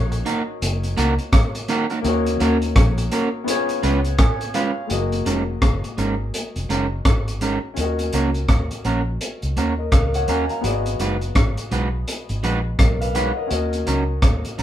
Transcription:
Already playing: A#1 A#3 C#4 D#4 F#4 C#5
0.12 muted clean electric guitar stroke, closed hi-hat
0.25 A#3 D#4 F#4 A#4, closed hi-hat
0.62 F#1, closed hi-hat
0.83 closed hi-hat
0.97 C#2 A#3 D#4 F#4 A#4, closed hi-hat
1.19 closed hi-hat
1.33 kick, cross-stick, closed hi-hat
1.55 closed hi-hat
1.68 A#3 D#4 F#4 A#4, closed hi-hat
1.90 A#3 D#4 F#4 A#4, closed hi-hat
2.01 D#2 A#3 C#4 D#4, closed hi-hat
2.06 F#4 C#5
2.26 closed hi-hat
2.40 D#2 A#3 C#4 F#4 A#4, closed hi-hat
2.62 closed hi-hat
2.76 A#1, kick, cross-stick, closed hi-hat
2.98 muted clean electric guitar stroke, closed hi-hat
3.12 A#3 C#4 F#4 A#4, closed hi-hat
3.44 B3 C#4 F4, closed hi-hat
3.49 G#4 C#5
3.69 closed hi-hat
3.83 C#2 G#3 C#4 F4 B4, closed hi-hat
4.04 closed hi-hat
4.19 G#5, kick, cross-stick, closed hi-hat
4.41 closed hi-hat
4.54 G#3 C#4 F4 B4 F5, closed hi-hat
4.87 F#1 A3 F#4, closed hi-hat
4.91 A#3 G#4 D#5
5.12 closed hi-hat
5.26 F1 G#3 C#4 D#4 A#4, closed hi-hat
5.62 F#1, kick, cross-stick, closed hi-hat
5.84 closed hi-hat
5.98 G#1 G#3 C#4 D#4 A#4, closed hi-hat
6.34 closed hi-hat
6.56 F1, closed hi-hat
6.69 F#1 G#3 C#4 D#4 A#4, closed hi-hat
7.05 G#1, kick, cross-stick, closed hi-hat
7.28 closed hi-hat
7.41 G#3 C#4 D#4 A#4, closed hi-hat
7.74 D#2 C#4 F4, closed hi-hat
7.78 A#4 D#5
7.83 F#4
7.99 closed hi-hat
8.12 C#2 A#3 C#4 F#4 A#4, closed hi-hat
8.34 closed hi-hat
8.49 D#2, kick, cross-stick, closed hi-hat
8.71 closed hi-hat
8.85 A#1 A#3 C#4 F#4 A#4, closed hi-hat
9.21 closed hi-hat
9.42 C#2, closed hi-hat
9.57 D#2 A#3 C#4 F#4 A#4, closed hi-hat
9.78 A#4 D#5
9.92 C#2 A#4 F5, kick, cross-stick, closed hi-hat
10.14 C#5 F#5, closed hi-hat
10.28 D#2 A#3 C#4 F#4 A#4 D#5 G#5, closed hi-hat
10.49 F5 A#5, closed hi-hat
10.61 G#1 B3 F#4 G#4, closed hi-hat
10.67 D5
10.73 D#5
10.86 closed hi-hat
10.99 F#1 G#3 D#4 F#4 B4, closed hi-hat
11.21 closed hi-hat
11.35 G#1, kick, cross-stick, closed hi-hat
11.57 closed hi-hat
11.71 B1 G#3 D#4 F#4 B4, closed hi-hat
12.08 closed hi-hat
12.29 G#1, closed hi-hat
12.43 A#1 G#3 D#4 F#4 B4, closed hi-hat
12.79 B1 A#4 D#5, kick, cross-stick, closed hi-hat
13.01 B4 F5, closed hi-hat
13.15 G#3 D#4 F#4 B4 C#5 F#5, closed hi-hat
13.36 A#4 D#5
13.47 C#4 F#4, closed hi-hat
13.51 D#2 A#4 D#5
13.73 closed hi-hat
13.87 C#2 F#3 C#4 D#4 A#4, closed hi-hat
14.22 D#2, kick, cross-stick, closed hi-hat
14.45 closed hi-hat
14.58 A#1 F#3 C#4 D#4 A#4, closed hi-hat

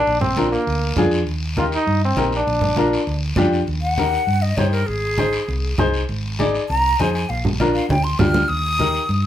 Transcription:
Already playing: D4
0.07 A#1, high conga, long guiro
0.21 C4, low conga
0.37 D4 F4 A#4, high conga, short guiro
0.52 A#3, short guiro
0.67 D2, high conga, long guiro
0.96 F2 D4 F4 G#4, high conga, low conga, short guiro
1.11 short guiro
1.27 D#2, high conga, long guiro
1.57 D#4 F4 G4 A#4, high conga, short guiro
1.72 D#4, short guiro
1.87 G2, high conga, long guiro
2.05 C4
2.17 A#1 D#4 G4 A#4, high conga, short guiro
2.32 short guiro
2.37 D4
2.47 A#1, high conga, long guiro
2.61 low conga
2.76 D4 F4 A#4, high conga, short guiro
2.93 short guiro
3.07 D2, high conga, long guiro
3.36 F2 D4 F4 G4, high conga, low conga, short guiro
3.53 short guiro
3.67 D#2, high conga, long guiro
3.82 F#5
3.98 D#4 G4 A#4, high conga, short guiro
4.13 short guiro
4.27 G2, high conga, long guiro
4.42 D#5
4.57 G2 D#4 G4 C5 C#5, high conga, short guiro
4.71 A#4, short guiro
4.87 G#1 G#4, high conga, long guiro
5.17 D#4 G#4 C5, high conga, short guiro
5.33 short guiro
5.48 C2, high conga, long guiro
5.78 C2 D#4 G#4 C5, high conga, low conga, short guiro
5.94 short guiro
6.09 G#1, high conga, long guiro
6.39 D#4 G#4 D5, high conga, short guiro
6.55 short guiro
6.69 C2 A#5, high conga, long guiro
7.00 F2 D#4 G#4 C5 G#5, high conga, short guiro
7.14 G#5, short guiro
7.29 A#1 F5, high conga, long guiro
7.45 low conga
7.60 D4 F4 A#4, high conga, short guiro
7.75 F5, short guiro
7.89 D2 G5, high conga, long guiro
8.04 C6
8.19 D2 D4 F4 G4 F6, low conga, short guiro
8.34 low conga, short guiro
8.48 D#2 D#6, high conga, long guiro
8.79 D#4 G4 A#4, high conga, short guiro
8.94 short guiro
9.09 G2, high conga, long guiro

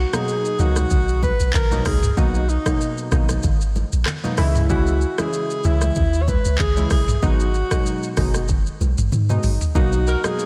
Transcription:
Already playing: F#4
0.13 B2 F#3 A#3 D#4 G#4, cross-stick, high conga, shaker
0.28 shaker
0.45 shaker
0.59 C#2 B2 F#3 A#3 D#4 F#4, low conga, shaker
0.76 cross-stick, high conga, shaker
0.90 B1, kick, low conga, shaker
1.08 shaker
1.23 B4, kick, high conga, shaker
1.40 B1, shaker
1.53 A#1 A#4, kick, clap, low conga, shaker
1.71 B2 F#3 A#3 D#4, high conga, shaker
1.85 C#2 G#4, kick, cross-stick, open hi-hat, shaker
2.03 mid tom, shaker
2.12 G#4
2.17 B1 B2 F#3 A#3 D#4 F#4, kick, low conga, shaker
2.34 high conga, shaker
2.49 D#4, shaker
2.66 B2 F#3 A#3 D#4, kick, cross-stick, high conga, shaker
2.81 shaker
2.98 shaker
3.11 A#1 B2 F#3 A#3 D#4, kick, cross-stick, low conga, shaker
3.29 cross-stick, high conga, shaker
3.43 G#1, kick, low conga, shaker
3.61 shaker
3.76 high conga, shaker
3.93 A#1, shaker
4.06 cross-stick, clap, low conga, shaker
4.24 B2 F#3 A#3 D#4, high conga, shaker
4.37 C#2 C#3 E3 G#3 E4, cross-stick, open hi-hat, shaker
4.55 mid tom, shaker
4.69 C#3 E3 G#3 E4 F#4, kick, low conga, shaker
4.87 high conga, shaker
5.01 shaker
5.18 C#3 E3 G#3 E4 G#4, cross-stick, high conga, shaker
5.33 shaker
5.50 shaker
5.64 C#2 C#3 E3 G#3 E4, low conga, shaker
5.81 cross-stick, high conga, shaker
5.95 D#2, kick, low conga, shaker
6.13 shaker
6.22 C#5
6.28 B4, kick, high conga, shaker
6.45 C#2, shaker
6.58 C#2 G#4, kick, clap, low conga, shaker
6.77 C#3 E3 G#3 E4, high conga, shaker
6.90 B1 G#4, kick, cross-stick, open hi-hat, shaker
7.08 mid tom, shaker
7.22 G#1 B2 F#3 G#3 D#4 F#4, kick, low conga, shaker
7.40 high conga, shaker
7.54 shaker
7.71 B2 F#3 G#3 D#4, kick, cross-stick, high conga, shaker
7.86 shaker
8.03 shaker
8.17 F#1 B2 F#3 G#3 D#4, kick, cross-stick, open hi-hat, low conga, shaker
8.34 cross-stick, high conga, shaker
8.48 kick, low conga, shaker
8.66 shaker
8.81 B1, high conga, shaker
8.98 G#1, mid tom, shaker
9.12 G#2, high tom, low conga, shaker
9.29 B2 F#3 G#3 D#4, mid tom, high conga, shaker
9.43 G#1, mid tom, open hi-hat, shaker
9.61 floor tom, shaker
9.75 B1 B2 F#3 A#3 D#4 F#4, kick, low conga, shaker
9.92 high conga, shaker
10.07 D#4 F#4 A#4, shaker
10.24 B2 F#3 A#3 D#4 G#4, cross-stick, high conga, shaker
10.39 shaker

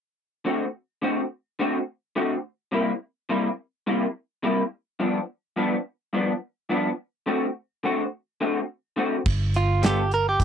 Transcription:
0.45 D3 A3 C4 F#4
1.02 D3 A3 C4 F#4
1.59 D3 A3 C4 F#4
2.16 D3 A3 C4 F#4
2.72 C3 G3 A#3 E4
3.29 C3 G3 A#3 E4
3.87 C3 G3 A#3 E4
4.43 C3 G3 A#3 E4
5.00 G2 F3 B3 D4
5.56 G2 F3 B3 D4
6.13 G2 F3 B3 D4
6.69 G2 F3 B3 D4
7.26 D3 A3 C4 F#4
7.84 D3 A3 C4 F#4
8.41 D3 A3 C4 F#4
8.96 D3 A3 C4 F#4
9.26 G1, kick, crash
9.54 F4, closed hi-hat
9.82 G3 B3 F4 G4 A4, snare, closed hi-hat
10.11 A#4, closed hi-hat
10.29 G4
10.40 G2, kick, closed hi-hat

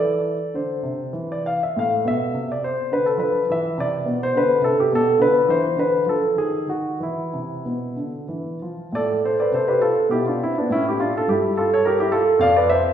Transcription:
Already playing: E3 A4 D5
0.54 D3 C5
0.83 C3
1.13 E3
1.32 D5
1.46 F5
1.63 E5
1.76 A2 A4 F5
2.05 B2 E5
2.34 C3
2.52 D5
2.64 C5
2.91 D3 B4
3.06 A4
3.17 F3 B4
3.50 E3 E4 E5
3.78 C3 D5
4.06 B2
4.23 C5
4.35 D3 B4
4.61 C3 A4
4.80 G4
4.93 B2 A4
5.18 D3 F4 B4
5.49 E3 C5
5.76 D3 B4
6.06 F3 A4
6.36 D#3 G#4
6.67 D#3 F#4
7.00 E3 E4
7.33 C3
7.65 B2
7.96 D3
8.28 E3
8.62 F3
8.92 A2 A4 D5
9.25 A4 C5
9.40 B4 D5
9.52 C3 A4 C5
9.68 G4 B4
9.81 F4 A4
10.09 B2 E4 G4
10.27 D4 F4
10.43 C4 E4
10.58 B3 D4
10.70 A2 E4
10.74 C#4
10.89 E4 G4
11.00 D4 F4
11.17 F4 A4
11.28 G2 E4 G4
11.57 F4 A4
11.74 A4 C#5
11.85 G4 A#4
12.00 E4 G4
12.12 F4 A4
12.39 F2 D5 F5
12.56 B4 D5
12.70 C5 E5

